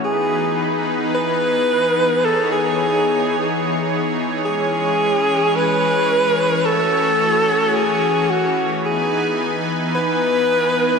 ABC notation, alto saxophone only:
X:1
M:4/4
L:1/16
Q:1/4=109
K:E
V:1 name="Alto saxophone"
G6 z2 B8 | A2 G8 z6 | G8 B8 | A8 G4 F3 z |
G6 z2 B8 |]